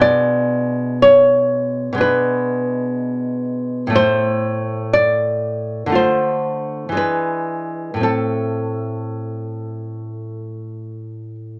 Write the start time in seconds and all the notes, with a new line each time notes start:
Already playing: B2 G#3
0.00 D4 D5
1.02 C#5
1.93 B2 G#3
1.98 D4 B4
3.87 A2 A3
3.92 E4 C5
4.93 D5
5.86 D3 A3
5.92 F4 C5
6.89 E3 G#3
6.95 D4 B4
7.94 A2 A3
8.00 C4 A4